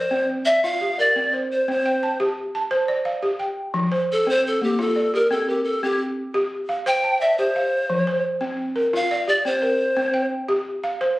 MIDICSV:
0, 0, Header, 1, 3, 480
1, 0, Start_track
1, 0, Key_signature, -1, "major"
1, 0, Tempo, 346021
1, 2326, Time_signature, 12, 3, 24, 8
1, 15524, End_track
2, 0, Start_track
2, 0, Title_t, "Pan flute"
2, 0, Program_c, 0, 75
2, 0, Note_on_c, 0, 72, 82
2, 365, Note_off_c, 0, 72, 0
2, 629, Note_on_c, 0, 76, 92
2, 881, Note_on_c, 0, 77, 99
2, 902, Note_off_c, 0, 76, 0
2, 1377, Note_on_c, 0, 74, 92
2, 1398, Note_off_c, 0, 77, 0
2, 1852, Note_off_c, 0, 74, 0
2, 2112, Note_on_c, 0, 72, 75
2, 2323, Note_off_c, 0, 72, 0
2, 2373, Note_on_c, 0, 72, 81
2, 3022, Note_off_c, 0, 72, 0
2, 5721, Note_on_c, 0, 69, 87
2, 5955, Note_on_c, 0, 72, 96
2, 5976, Note_off_c, 0, 69, 0
2, 6182, Note_off_c, 0, 72, 0
2, 6201, Note_on_c, 0, 69, 83
2, 6410, Note_off_c, 0, 69, 0
2, 6431, Note_on_c, 0, 67, 87
2, 6666, Note_on_c, 0, 69, 91
2, 6687, Note_off_c, 0, 67, 0
2, 7132, Note_off_c, 0, 69, 0
2, 7140, Note_on_c, 0, 70, 84
2, 7359, Note_off_c, 0, 70, 0
2, 7372, Note_on_c, 0, 69, 89
2, 7616, Note_on_c, 0, 67, 75
2, 7637, Note_off_c, 0, 69, 0
2, 7820, Note_off_c, 0, 67, 0
2, 7828, Note_on_c, 0, 69, 72
2, 8095, Note_on_c, 0, 67, 75
2, 8116, Note_off_c, 0, 69, 0
2, 8332, Note_off_c, 0, 67, 0
2, 9533, Note_on_c, 0, 79, 101
2, 10001, Note_on_c, 0, 76, 88
2, 10022, Note_off_c, 0, 79, 0
2, 10236, Note_on_c, 0, 72, 83
2, 10257, Note_off_c, 0, 76, 0
2, 11441, Note_off_c, 0, 72, 0
2, 12431, Note_on_c, 0, 77, 97
2, 12864, Note_off_c, 0, 77, 0
2, 12880, Note_on_c, 0, 74, 88
2, 13105, Note_off_c, 0, 74, 0
2, 13122, Note_on_c, 0, 72, 90
2, 14265, Note_off_c, 0, 72, 0
2, 15524, End_track
3, 0, Start_track
3, 0, Title_t, "Balafon"
3, 0, Program_c, 1, 12
3, 0, Note_on_c, 1, 72, 63
3, 0, Note_on_c, 1, 74, 60
3, 151, Note_on_c, 1, 60, 80
3, 403, Note_off_c, 1, 72, 0
3, 628, Note_off_c, 1, 74, 0
3, 637, Note_off_c, 1, 60, 0
3, 645, Note_on_c, 1, 74, 64
3, 887, Note_on_c, 1, 65, 81
3, 1125, Note_on_c, 1, 67, 66
3, 1365, Note_off_c, 1, 74, 0
3, 1366, Note_off_c, 1, 65, 0
3, 1374, Note_on_c, 1, 70, 63
3, 1608, Note_on_c, 1, 60, 75
3, 1846, Note_off_c, 1, 67, 0
3, 1848, Note_on_c, 1, 72, 59
3, 2087, Note_off_c, 1, 60, 0
3, 2090, Note_off_c, 1, 70, 0
3, 2332, Note_on_c, 1, 60, 82
3, 2568, Note_off_c, 1, 72, 0
3, 2574, Note_on_c, 1, 79, 66
3, 2810, Note_off_c, 1, 60, 0
3, 2816, Note_on_c, 1, 81, 59
3, 3052, Note_on_c, 1, 67, 80
3, 3291, Note_off_c, 1, 79, 0
3, 3520, Note_off_c, 1, 81, 0
3, 3530, Note_off_c, 1, 67, 0
3, 3536, Note_on_c, 1, 81, 61
3, 3758, Note_on_c, 1, 72, 80
3, 4000, Note_on_c, 1, 74, 64
3, 4234, Note_on_c, 1, 77, 60
3, 4243, Note_off_c, 1, 72, 0
3, 4253, Note_off_c, 1, 81, 0
3, 4474, Note_on_c, 1, 67, 72
3, 4709, Note_on_c, 1, 79, 56
3, 4725, Note_off_c, 1, 74, 0
3, 4962, Note_off_c, 1, 67, 0
3, 4962, Note_off_c, 1, 77, 0
3, 5186, Note_on_c, 1, 53, 87
3, 5433, Note_on_c, 1, 72, 69
3, 5440, Note_off_c, 1, 79, 0
3, 5678, Note_off_c, 1, 53, 0
3, 5919, Note_on_c, 1, 60, 78
3, 6162, Note_off_c, 1, 72, 0
3, 6401, Note_on_c, 1, 58, 68
3, 6405, Note_off_c, 1, 60, 0
3, 6643, Note_on_c, 1, 65, 87
3, 6877, Note_on_c, 1, 74, 61
3, 7126, Note_off_c, 1, 58, 0
3, 7126, Note_off_c, 1, 65, 0
3, 7128, Note_on_c, 1, 67, 64
3, 7361, Note_on_c, 1, 60, 85
3, 7603, Note_off_c, 1, 74, 0
3, 7610, Note_on_c, 1, 70, 58
3, 7845, Note_off_c, 1, 60, 0
3, 7849, Note_off_c, 1, 67, 0
3, 8089, Note_on_c, 1, 60, 83
3, 8330, Note_off_c, 1, 70, 0
3, 8569, Note_off_c, 1, 60, 0
3, 8799, Note_on_c, 1, 67, 83
3, 9278, Note_on_c, 1, 77, 70
3, 9284, Note_off_c, 1, 67, 0
3, 9519, Note_on_c, 1, 72, 83
3, 9761, Note_on_c, 1, 81, 65
3, 10003, Note_off_c, 1, 72, 0
3, 10003, Note_off_c, 1, 77, 0
3, 10011, Note_on_c, 1, 74, 65
3, 10249, Note_on_c, 1, 67, 82
3, 10484, Note_off_c, 1, 81, 0
3, 10484, Note_on_c, 1, 77, 64
3, 10728, Note_off_c, 1, 67, 0
3, 10729, Note_off_c, 1, 74, 0
3, 10954, Note_on_c, 1, 53, 86
3, 11197, Note_on_c, 1, 72, 75
3, 11205, Note_off_c, 1, 77, 0
3, 11440, Note_off_c, 1, 53, 0
3, 11663, Note_on_c, 1, 60, 82
3, 11921, Note_off_c, 1, 72, 0
3, 12147, Note_on_c, 1, 70, 62
3, 12154, Note_off_c, 1, 60, 0
3, 12393, Note_on_c, 1, 65, 84
3, 12641, Note_on_c, 1, 74, 65
3, 12867, Note_on_c, 1, 67, 61
3, 12875, Note_off_c, 1, 70, 0
3, 12878, Note_off_c, 1, 65, 0
3, 13112, Note_on_c, 1, 60, 80
3, 13347, Note_on_c, 1, 70, 63
3, 13361, Note_off_c, 1, 74, 0
3, 13594, Note_off_c, 1, 67, 0
3, 13597, Note_off_c, 1, 60, 0
3, 13824, Note_on_c, 1, 60, 84
3, 14061, Note_on_c, 1, 79, 67
3, 14074, Note_off_c, 1, 70, 0
3, 14312, Note_off_c, 1, 60, 0
3, 14545, Note_on_c, 1, 67, 82
3, 14790, Note_off_c, 1, 79, 0
3, 15031, Note_on_c, 1, 77, 66
3, 15032, Note_off_c, 1, 67, 0
3, 15272, Note_on_c, 1, 72, 79
3, 15524, Note_off_c, 1, 72, 0
3, 15524, Note_off_c, 1, 77, 0
3, 15524, End_track
0, 0, End_of_file